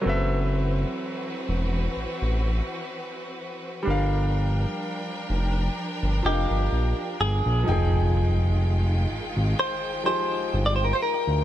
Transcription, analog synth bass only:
X:1
M:4/4
L:1/16
Q:"Swing 16ths" 1/4=63
K:Fdor
V:1 name="Analog synth bass" clef=bass
^F,,,4 z2 =E,,,2 =A,,, A,,,2 z4 z | G,,,4 z2 F,,,2 z G,,, F,,, G,,, B,,, z G,,, B,,, | F,,,6 A,,, A,,, z4 G,,,2 z D,, |]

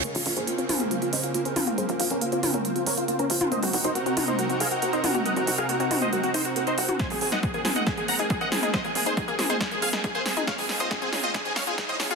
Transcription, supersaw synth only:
X:1
M:4/4
L:1/16
Q:1/4=138
K:Bbm
V:1 name="Supersaw synth"
B F F [Ac] F F F [Ac] F F [ce] F F [Ac] F F | [Ac] F F [DB] F F F [DB] F F [Bd] F F [DB] F F | [ce] G G [Ec] G G G [Ec] G G [Af] G G [Ec] G G | [eg] G G [Af] G G G [ce] G G [Ec] G G [Ec] G G |
[ca] A A [eg] A A A [eg] A A [gb] A A [eg] A A | [ce] A A [Ac] A A A [Ac] z A [Af] A A [Ac] A A | [df] A A [ce] A A A [ce] A A [df] A z [ce] A A |]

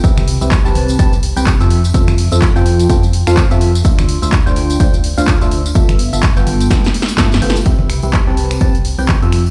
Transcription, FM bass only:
X:1
M:4/4
L:1/16
Q:"Swing 16ths" 1/4=126
K:C
V:1 name="FM bass" clef=bass
C,,3 C,,2 C,,3 C,,3 C,,2 F,,3 | F,,3 F,,2 F,,3 F,,3 F,,2 F,,3 | D,,3 D,,2 D,,3 D,,3 D,,2 D,,3 | G,,,3 G,,,2 G,,,3 G,,, z3 G,,2 G,,,2 |
C,,3 C,,2 C,,3 C,,3 C,,2 F,,3 |]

